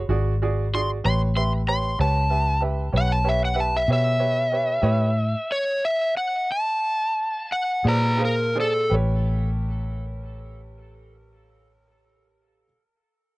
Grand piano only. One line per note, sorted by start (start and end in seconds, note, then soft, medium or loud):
0.09 0.32 F#4 medium
0.09 0.33 G#4 medium
0.09 0.33 D5 medium
0.42 0.65 F#4 medium
0.42 0.65 G#4 medium
0.42 0.65 D5 medium
0.73 0.96 F#4 medium
0.73 0.97 G#4 medium
0.73 0.97 D5 medium
1.04 1.27 G4 medium
1.04 1.27 B4 medium
1.04 1.28 C#5 medium
1.36 1.59 G4 medium
1.36 1.59 B4 medium
1.36 1.60 E5 medium
1.67 1.91 G4 medium
1.67 1.91 B4 medium
1.67 1.91 C#5 medium
1.99 2.22 G4 medium
1.99 2.23 B4 soft
1.99 2.23 C#5 medium
2.30 2.54 G4 medium
2.30 2.54 B4 soft
2.30 2.54 E5 medium
2.61 2.85 G4 medium
2.61 2.85 B4 soft
2.61 2.86 E5 medium
2.92 3.17 G4 soft
2.92 3.17 B4 soft
2.92 3.17 C#5 medium
3.24 3.49 G4 medium
3.24 3.48 B4 soft
3.24 3.49 C#5 medium
3.54 3.80 G4 medium
3.54 3.80 B4 medium
3.54 3.80 E5 medium
3.89 4.12 G4 medium
3.89 4.13 B4 soft
3.89 4.13 C#5 medium
4.19 4.44 G4 medium
4.19 4.44 B4 medium
4.19 4.44 C#5 medium
4.52 4.76 G4 medium
4.52 4.77 B4 soft
4.52 4.77 C#5 medium
4.82 5.07 G4 medium
4.82 5.08 B4 medium
4.82 5.08 C#5 medium
7.84 8.11 G#4 medium
7.84 8.11 C5 medium
7.84 8.12 D5 medium
8.17 8.46 G#4 medium
8.17 8.46 C5 medium
8.17 8.46 F5 medium
8.55 8.83 G#4 medium
8.55 8.83 C5 soft
8.55 8.83 D5 medium
8.90 12.63 G4 medium
8.90 12.64 B4 medium
8.94 12.67 C#5 medium